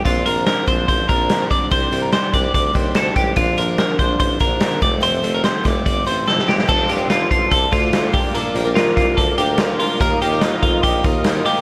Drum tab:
CC |----------------|----------------|----------------|----------------|
HH |x-x-x-x-x-x-x-x-|x-x-x-x-x-x-x-x-|x-x-x-x-x-x-x-x-|x-x-x-x-x-x-----|
SD |----o-------o---|----o-------o---|----o-------o---|----o-o-----oooo|
BD |o-----o-o-o---o-|o-----o-o-o---o-|o-----o-o-o---o-|------o-o-------|

CC |x---------------|----------------|----------------|
HH |--x-x-x-x-x-x-o-|x-x-x-x-x-x-x-o-|x-x-x-x-x-x-x-o-|
SD |----o-------o---|----o-o-----o---|----o-------o---|
BD |o-----o-o-o---o-|------o-o-------|o-----o-o-o-----|